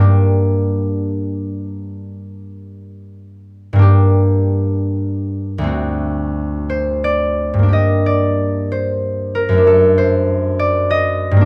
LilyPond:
<<
  \new Staff \with { instrumentName = "Harp" } { \time 6/8 \key g \minor \tempo 4. = 63 r2. | r2. | r2. | r4. c''8 d''4 |
ees''8 d''4 c''4 bes'8 | a'8 c''4 d''8 ees''4 | }
  \new Staff \with { instrumentName = "Harp" } { \time 6/8 \key g \minor <g, bes d' g'>2.~ | <g, bes d' g'>2. | <g, bes d' g'>2. | <d, a c' fis'>2. |
<g, bes d' g'>2. | <fis, a d'>2. | }
>>